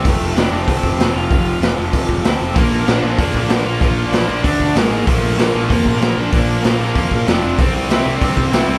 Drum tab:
HH |o-o-o-o-|o-o-o-o-|o-o-o-o-|o-o-o-o-|
SD |--o---o-|--o---o-|--o---o-|--o---o-|
BD |o---oo--|o---oo--|o---oo--|o---oo--|

HH |o-o-o-o-|o-o-o-o-|o-o-o-o-|
SD |--o---o-|--o---o-|--o---o-|
BD |o---oo--|o---oo--|o---oo--|